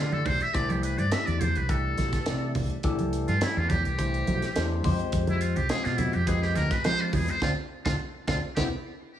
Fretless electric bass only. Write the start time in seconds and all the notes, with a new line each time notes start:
Already playing: D3
0.26 B1
0.55 C2
0.98 G2
1.27 E2
1.56 C2
1.98 B1
2.27 C3
2.55 C2
2.84 C2
3.28 G2
3.56 E2
3.85 C2
4.27 B1
4.56 E2
4.84 F2
5.13 F2
5.57 C2
5.85 B2
6.14 F2
6.57 D2
6.85 F3
7.13 E2
7.42 D2
7.86 D2
8.28 D2
8.57 C2